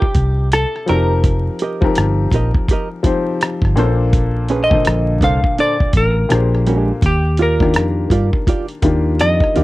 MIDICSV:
0, 0, Header, 1, 7, 480
1, 0, Start_track
1, 0, Tempo, 722892
1, 823, Time_signature, 4, 2, 24, 8
1, 6398, End_track
2, 0, Start_track
2, 0, Title_t, "Clean electric guitar"
2, 0, Program_c, 0, 27
2, 0, Note_on_c, 0, 67, 84
2, 321, Note_off_c, 0, 67, 0
2, 354, Note_on_c, 0, 69, 83
2, 591, Note_off_c, 0, 69, 0
2, 593, Note_on_c, 0, 70, 68
2, 2002, Note_off_c, 0, 70, 0
2, 3079, Note_on_c, 0, 75, 91
2, 3444, Note_off_c, 0, 75, 0
2, 3479, Note_on_c, 0, 77, 88
2, 3717, Note_off_c, 0, 77, 0
2, 3720, Note_on_c, 0, 74, 95
2, 3935, Note_off_c, 0, 74, 0
2, 3965, Note_on_c, 0, 70, 78
2, 4450, Note_off_c, 0, 70, 0
2, 4450, Note_on_c, 0, 69, 78
2, 4684, Note_off_c, 0, 69, 0
2, 4687, Note_on_c, 0, 67, 77
2, 4922, Note_off_c, 0, 67, 0
2, 4930, Note_on_c, 0, 70, 72
2, 5850, Note_off_c, 0, 70, 0
2, 6113, Note_on_c, 0, 75, 86
2, 6398, Note_off_c, 0, 75, 0
2, 6398, End_track
3, 0, Start_track
3, 0, Title_t, "Hollow-body jazz guitar"
3, 0, Program_c, 1, 26
3, 590, Note_on_c, 1, 67, 67
3, 595, Note_on_c, 1, 70, 81
3, 597, Note_on_c, 1, 75, 82
3, 745, Note_off_c, 1, 67, 0
3, 747, Note_off_c, 1, 70, 0
3, 748, Note_off_c, 1, 75, 0
3, 1076, Note_on_c, 1, 67, 75
3, 1082, Note_on_c, 1, 70, 80
3, 1087, Note_on_c, 1, 75, 74
3, 1295, Note_off_c, 1, 67, 0
3, 1298, Note_off_c, 1, 70, 0
3, 1300, Note_off_c, 1, 75, 0
3, 1556, Note_on_c, 1, 67, 69
3, 1561, Note_on_c, 1, 70, 76
3, 1565, Note_on_c, 1, 75, 83
3, 1666, Note_off_c, 1, 67, 0
3, 1668, Note_off_c, 1, 70, 0
3, 1670, Note_off_c, 1, 75, 0
3, 1800, Note_on_c, 1, 67, 75
3, 1809, Note_on_c, 1, 70, 87
3, 1813, Note_on_c, 1, 75, 79
3, 1908, Note_off_c, 1, 67, 0
3, 1912, Note_off_c, 1, 70, 0
3, 1915, Note_off_c, 1, 75, 0
3, 2509, Note_on_c, 1, 62, 71
3, 2515, Note_on_c, 1, 69, 65
3, 2517, Note_on_c, 1, 72, 87
3, 2622, Note_off_c, 1, 62, 0
3, 2625, Note_off_c, 1, 69, 0
3, 2626, Note_off_c, 1, 72, 0
3, 2988, Note_on_c, 1, 61, 78
3, 2993, Note_on_c, 1, 68, 76
3, 2997, Note_on_c, 1, 71, 86
3, 3080, Note_off_c, 1, 61, 0
3, 3080, Note_on_c, 1, 62, 78
3, 3086, Note_off_c, 1, 68, 0
3, 3086, Note_on_c, 1, 69, 76
3, 3090, Note_off_c, 1, 71, 0
3, 3090, Note_on_c, 1, 72, 86
3, 3211, Note_off_c, 1, 62, 0
3, 3213, Note_off_c, 1, 69, 0
3, 3215, Note_off_c, 1, 72, 0
3, 3470, Note_on_c, 1, 62, 70
3, 3474, Note_on_c, 1, 69, 78
3, 3479, Note_on_c, 1, 72, 78
3, 3583, Note_off_c, 1, 62, 0
3, 3585, Note_off_c, 1, 69, 0
3, 3588, Note_off_c, 1, 72, 0
3, 3710, Note_on_c, 1, 62, 70
3, 3719, Note_on_c, 1, 69, 81
3, 3721, Note_on_c, 1, 72, 77
3, 3823, Note_off_c, 1, 62, 0
3, 3827, Note_off_c, 1, 69, 0
3, 3829, Note_off_c, 1, 72, 0
3, 4428, Note_on_c, 1, 56, 77
3, 4435, Note_on_c, 1, 62, 70
3, 4441, Note_on_c, 1, 67, 76
3, 4584, Note_off_c, 1, 56, 0
3, 4587, Note_off_c, 1, 62, 0
3, 4590, Note_off_c, 1, 67, 0
3, 4908, Note_on_c, 1, 65, 72
3, 4914, Note_on_c, 1, 67, 74
3, 4920, Note_on_c, 1, 74, 82
3, 5131, Note_off_c, 1, 65, 0
3, 5134, Note_off_c, 1, 67, 0
3, 5137, Note_off_c, 1, 74, 0
3, 5387, Note_on_c, 1, 65, 78
3, 5394, Note_on_c, 1, 67, 76
3, 5398, Note_on_c, 1, 74, 80
3, 5502, Note_off_c, 1, 65, 0
3, 5505, Note_off_c, 1, 67, 0
3, 5507, Note_off_c, 1, 74, 0
3, 5630, Note_on_c, 1, 65, 68
3, 5636, Note_on_c, 1, 67, 75
3, 5641, Note_on_c, 1, 74, 80
3, 5743, Note_off_c, 1, 65, 0
3, 5746, Note_off_c, 1, 67, 0
3, 5748, Note_off_c, 1, 74, 0
3, 6348, Note_on_c, 1, 65, 67
3, 6353, Note_on_c, 1, 67, 73
3, 6358, Note_on_c, 1, 74, 88
3, 6398, Note_off_c, 1, 65, 0
3, 6398, Note_off_c, 1, 67, 0
3, 6398, Note_off_c, 1, 74, 0
3, 6398, End_track
4, 0, Start_track
4, 0, Title_t, "Upright piano"
4, 0, Program_c, 2, 0
4, 0, Control_c, 2, 64, 127
4, 0, Note_on_c, 2, 48, 65
4, 0, Note_on_c, 2, 60, 61
4, 0, Note_on_c, 2, 62, 56
4, 0, Note_on_c, 2, 63, 61
4, 0, Note_on_c, 2, 65, 57
4, 0, Note_on_c, 2, 67, 74
4, 0, Note_on_c, 2, 70, 98
4, 67, Note_off_c, 2, 63, 0
4, 69, Note_off_c, 2, 65, 0
4, 72, Note_off_c, 2, 67, 0
4, 572, Note_on_c, 2, 53, 69
4, 577, Note_off_c, 2, 60, 0
4, 577, Note_on_c, 2, 60, 63
4, 582, Note_on_c, 2, 63, 61
4, 586, Note_on_c, 2, 67, 63
4, 590, Control_c, 2, 64, 0
4, 591, Note_off_c, 2, 48, 0
4, 592, Note_off_c, 2, 70, 0
4, 594, Note_on_c, 2, 70, 75
4, 596, Note_off_c, 2, 62, 0
4, 724, Control_c, 2, 64, 127
4, 1076, Note_off_c, 2, 53, 0
4, 1078, Note_off_c, 2, 60, 0
4, 1081, Note_off_c, 2, 63, 0
4, 1083, Note_off_c, 2, 67, 0
4, 1086, Note_off_c, 2, 70, 0
4, 1201, Note_on_c, 2, 53, 79
4, 1207, Note_on_c, 2, 60, 75
4, 1213, Note_on_c, 2, 63, 73
4, 1218, Note_on_c, 2, 67, 73
4, 1224, Note_on_c, 2, 70, 89
4, 1892, Note_off_c, 2, 53, 0
4, 1895, Note_off_c, 2, 60, 0
4, 1898, Note_off_c, 2, 63, 0
4, 1901, Note_off_c, 2, 67, 0
4, 1904, Note_off_c, 2, 70, 0
4, 2010, Note_on_c, 2, 53, 80
4, 2017, Note_on_c, 2, 60, 72
4, 2023, Note_on_c, 2, 63, 64
4, 2028, Note_on_c, 2, 67, 73
4, 2033, Note_on_c, 2, 72, 79
4, 2432, Note_off_c, 2, 53, 0
4, 2435, Note_off_c, 2, 60, 0
4, 2438, Note_off_c, 2, 63, 0
4, 2441, Note_off_c, 2, 67, 0
4, 2444, Note_off_c, 2, 72, 0
4, 2494, Note_on_c, 2, 46, 86
4, 2498, Note_on_c, 2, 58, 76
4, 2504, Note_on_c, 2, 61, 62
4, 2509, Note_on_c, 2, 69, 76
4, 2512, Control_c, 2, 64, 0
4, 2516, Note_on_c, 2, 72, 96
4, 2548, Note_on_c, 2, 62, 75
4, 2557, Note_off_c, 2, 61, 0
4, 2641, Control_c, 2, 64, 127
4, 2996, Note_off_c, 2, 46, 0
4, 2999, Note_off_c, 2, 58, 0
4, 3004, Note_off_c, 2, 69, 0
4, 3008, Note_off_c, 2, 72, 0
4, 3024, Note_off_c, 2, 62, 0
4, 3121, Note_on_c, 2, 46, 74
4, 3128, Note_on_c, 2, 58, 65
4, 3133, Note_on_c, 2, 50, 57
4, 3137, Note_on_c, 2, 69, 60
4, 3143, Note_on_c, 2, 72, 72
4, 3901, Note_off_c, 2, 46, 0
4, 3904, Note_off_c, 2, 58, 0
4, 3907, Note_off_c, 2, 50, 0
4, 3909, Note_off_c, 2, 69, 0
4, 3912, Note_off_c, 2, 72, 0
4, 4175, Note_on_c, 2, 46, 67
4, 4179, Note_on_c, 2, 58, 70
4, 4184, Note_on_c, 2, 62, 66
4, 4188, Note_on_c, 2, 67, 62
4, 4190, Control_c, 2, 64, 0
4, 4193, Note_on_c, 2, 68, 64
4, 4197, Note_on_c, 2, 72, 73
4, 4303, Control_c, 2, 64, 127
4, 4594, Note_off_c, 2, 46, 0
4, 4597, Note_off_c, 2, 58, 0
4, 4599, Note_off_c, 2, 62, 0
4, 4601, Note_off_c, 2, 67, 0
4, 4604, Note_off_c, 2, 68, 0
4, 4606, Note_off_c, 2, 72, 0
4, 4672, Control_c, 2, 64, 0
4, 4778, Control_c, 2, 64, 127
4, 5044, Note_on_c, 2, 51, 63
4, 5049, Note_on_c, 2, 58, 63
4, 5056, Note_on_c, 2, 62, 64
4, 5062, Note_on_c, 2, 65, 57
4, 5068, Note_on_c, 2, 67, 69
4, 5734, Note_off_c, 2, 51, 0
4, 5736, Note_off_c, 2, 58, 0
4, 5740, Note_off_c, 2, 62, 0
4, 5743, Note_off_c, 2, 65, 0
4, 5746, Note_off_c, 2, 67, 0
4, 5856, Note_on_c, 2, 51, 81
4, 5860, Note_on_c, 2, 58, 67
4, 5866, Note_on_c, 2, 62, 66
4, 5873, Note_on_c, 2, 65, 69
4, 5878, Note_on_c, 2, 67, 80
4, 6275, Note_off_c, 2, 51, 0
4, 6277, Note_off_c, 2, 58, 0
4, 6280, Note_off_c, 2, 62, 0
4, 6284, Note_off_c, 2, 65, 0
4, 6286, Note_off_c, 2, 67, 0
4, 6336, Note_on_c, 2, 51, 60
4, 6343, Note_on_c, 2, 58, 52
4, 6347, Note_on_c, 2, 62, 52
4, 6354, Note_on_c, 2, 65, 54
4, 6360, Note_on_c, 2, 67, 59
4, 6398, Note_off_c, 2, 51, 0
4, 6398, Note_off_c, 2, 58, 0
4, 6398, Note_off_c, 2, 62, 0
4, 6398, Note_off_c, 2, 65, 0
4, 6398, Note_off_c, 2, 67, 0
4, 6398, End_track
5, 0, Start_track
5, 0, Title_t, "Fingered electric bass"
5, 0, Program_c, 3, 33
5, 107, Note_on_c, 3, 36, 72
5, 425, Note_off_c, 3, 36, 0
5, 593, Note_on_c, 3, 29, 76
5, 984, Note_off_c, 3, 29, 0
5, 1315, Note_on_c, 3, 31, 81
5, 1507, Note_off_c, 3, 31, 0
5, 1544, Note_on_c, 3, 34, 83
5, 1666, Note_off_c, 3, 34, 0
5, 2408, Note_on_c, 3, 31, 72
5, 2517, Note_off_c, 3, 31, 0
5, 2517, Note_on_c, 3, 34, 84
5, 3104, Note_off_c, 3, 34, 0
5, 3235, Note_on_c, 3, 34, 87
5, 3467, Note_off_c, 3, 34, 0
5, 3467, Note_on_c, 3, 36, 73
5, 3587, Note_off_c, 3, 36, 0
5, 3948, Note_on_c, 3, 33, 86
5, 4143, Note_off_c, 3, 33, 0
5, 4195, Note_on_c, 3, 34, 90
5, 4585, Note_off_c, 3, 34, 0
5, 4670, Note_on_c, 3, 39, 93
5, 5154, Note_off_c, 3, 39, 0
5, 5154, Note_on_c, 3, 41, 67
5, 5347, Note_off_c, 3, 41, 0
5, 5387, Note_on_c, 3, 43, 81
5, 5507, Note_off_c, 3, 43, 0
5, 5869, Note_on_c, 3, 39, 81
5, 6117, Note_off_c, 3, 39, 0
5, 6117, Note_on_c, 3, 41, 76
5, 6233, Note_off_c, 3, 41, 0
5, 6356, Note_on_c, 3, 39, 80
5, 6398, Note_off_c, 3, 39, 0
5, 6398, End_track
6, 0, Start_track
6, 0, Title_t, "Muted hollow-body jazz guitar strokes"
6, 356, Note_on_c, 9, 29, 30
6, 423, Note_off_c, 9, 29, 0
6, 1314, Note_on_c, 9, 29, 38
6, 1380, Note_off_c, 9, 29, 0
6, 2276, Note_on_c, 9, 29, 33
6, 2342, Note_off_c, 9, 29, 0
6, 3228, Note_on_c, 9, 29, 33
6, 3295, Note_off_c, 9, 29, 0
6, 4189, Note_on_c, 9, 29, 37
6, 4255, Note_off_c, 9, 29, 0
6, 5150, Note_on_c, 9, 29, 37
6, 5217, Note_off_c, 9, 29, 0
6, 6117, Note_on_c, 9, 29, 34
6, 6184, Note_off_c, 9, 29, 0
6, 6398, End_track
7, 0, Start_track
7, 0, Title_t, "Drums"
7, 13, Note_on_c, 9, 36, 79
7, 80, Note_off_c, 9, 36, 0
7, 97, Note_on_c, 9, 42, 67
7, 99, Note_on_c, 9, 36, 77
7, 163, Note_off_c, 9, 42, 0
7, 166, Note_off_c, 9, 36, 0
7, 344, Note_on_c, 9, 42, 78
7, 354, Note_on_c, 9, 37, 105
7, 410, Note_off_c, 9, 42, 0
7, 421, Note_off_c, 9, 37, 0
7, 503, Note_on_c, 9, 37, 29
7, 570, Note_off_c, 9, 37, 0
7, 582, Note_on_c, 9, 42, 55
7, 649, Note_off_c, 9, 42, 0
7, 821, Note_on_c, 9, 42, 65
7, 822, Note_on_c, 9, 36, 93
7, 888, Note_off_c, 9, 36, 0
7, 888, Note_off_c, 9, 42, 0
7, 1056, Note_on_c, 9, 42, 59
7, 1122, Note_off_c, 9, 42, 0
7, 1207, Note_on_c, 9, 36, 88
7, 1274, Note_off_c, 9, 36, 0
7, 1298, Note_on_c, 9, 42, 89
7, 1314, Note_on_c, 9, 37, 106
7, 1364, Note_off_c, 9, 42, 0
7, 1381, Note_off_c, 9, 37, 0
7, 1537, Note_on_c, 9, 36, 76
7, 1544, Note_on_c, 9, 42, 60
7, 1604, Note_off_c, 9, 36, 0
7, 1611, Note_off_c, 9, 42, 0
7, 1690, Note_on_c, 9, 36, 75
7, 1756, Note_off_c, 9, 36, 0
7, 1783, Note_on_c, 9, 36, 84
7, 1788, Note_on_c, 9, 42, 66
7, 1849, Note_off_c, 9, 36, 0
7, 1854, Note_off_c, 9, 42, 0
7, 2018, Note_on_c, 9, 42, 66
7, 2019, Note_on_c, 9, 36, 77
7, 2085, Note_off_c, 9, 36, 0
7, 2085, Note_off_c, 9, 42, 0
7, 2265, Note_on_c, 9, 42, 77
7, 2275, Note_on_c, 9, 37, 99
7, 2331, Note_off_c, 9, 42, 0
7, 2341, Note_off_c, 9, 37, 0
7, 2402, Note_on_c, 9, 36, 94
7, 2423, Note_on_c, 9, 37, 32
7, 2468, Note_off_c, 9, 36, 0
7, 2489, Note_off_c, 9, 37, 0
7, 2503, Note_on_c, 9, 42, 57
7, 2570, Note_off_c, 9, 42, 0
7, 2742, Note_on_c, 9, 36, 101
7, 2744, Note_on_c, 9, 42, 61
7, 2809, Note_off_c, 9, 36, 0
7, 2810, Note_off_c, 9, 42, 0
7, 2978, Note_on_c, 9, 42, 55
7, 3045, Note_off_c, 9, 42, 0
7, 3128, Note_on_c, 9, 36, 90
7, 3194, Note_off_c, 9, 36, 0
7, 3219, Note_on_c, 9, 42, 93
7, 3235, Note_on_c, 9, 37, 98
7, 3285, Note_off_c, 9, 42, 0
7, 3302, Note_off_c, 9, 37, 0
7, 3459, Note_on_c, 9, 36, 79
7, 3467, Note_on_c, 9, 42, 57
7, 3525, Note_off_c, 9, 36, 0
7, 3534, Note_off_c, 9, 42, 0
7, 3611, Note_on_c, 9, 36, 77
7, 3677, Note_off_c, 9, 36, 0
7, 3708, Note_on_c, 9, 42, 61
7, 3775, Note_off_c, 9, 42, 0
7, 3854, Note_on_c, 9, 36, 77
7, 3920, Note_off_c, 9, 36, 0
7, 3938, Note_on_c, 9, 42, 65
7, 3940, Note_on_c, 9, 36, 83
7, 4004, Note_off_c, 9, 42, 0
7, 4006, Note_off_c, 9, 36, 0
7, 4185, Note_on_c, 9, 42, 82
7, 4195, Note_on_c, 9, 37, 104
7, 4251, Note_off_c, 9, 42, 0
7, 4261, Note_off_c, 9, 37, 0
7, 4346, Note_on_c, 9, 37, 30
7, 4413, Note_off_c, 9, 37, 0
7, 4425, Note_on_c, 9, 42, 57
7, 4492, Note_off_c, 9, 42, 0
7, 4663, Note_on_c, 9, 36, 95
7, 4664, Note_on_c, 9, 42, 62
7, 4729, Note_off_c, 9, 36, 0
7, 4731, Note_off_c, 9, 42, 0
7, 4896, Note_on_c, 9, 42, 61
7, 4963, Note_off_c, 9, 42, 0
7, 5048, Note_on_c, 9, 36, 89
7, 5064, Note_on_c, 9, 37, 35
7, 5115, Note_off_c, 9, 36, 0
7, 5130, Note_off_c, 9, 37, 0
7, 5138, Note_on_c, 9, 42, 87
7, 5155, Note_on_c, 9, 37, 97
7, 5205, Note_off_c, 9, 42, 0
7, 5221, Note_off_c, 9, 37, 0
7, 5379, Note_on_c, 9, 36, 70
7, 5386, Note_on_c, 9, 42, 60
7, 5446, Note_off_c, 9, 36, 0
7, 5453, Note_off_c, 9, 42, 0
7, 5531, Note_on_c, 9, 36, 71
7, 5598, Note_off_c, 9, 36, 0
7, 5624, Note_on_c, 9, 36, 84
7, 5628, Note_on_c, 9, 42, 67
7, 5691, Note_off_c, 9, 36, 0
7, 5694, Note_off_c, 9, 42, 0
7, 5766, Note_on_c, 9, 42, 37
7, 5833, Note_off_c, 9, 42, 0
7, 5859, Note_on_c, 9, 42, 70
7, 5861, Note_on_c, 9, 36, 75
7, 5925, Note_off_c, 9, 42, 0
7, 5927, Note_off_c, 9, 36, 0
7, 6106, Note_on_c, 9, 42, 80
7, 6116, Note_on_c, 9, 37, 96
7, 6172, Note_off_c, 9, 42, 0
7, 6182, Note_off_c, 9, 37, 0
7, 6244, Note_on_c, 9, 36, 85
7, 6266, Note_on_c, 9, 37, 30
7, 6311, Note_off_c, 9, 36, 0
7, 6333, Note_off_c, 9, 37, 0
7, 6346, Note_on_c, 9, 42, 54
7, 6398, Note_off_c, 9, 42, 0
7, 6398, End_track
0, 0, End_of_file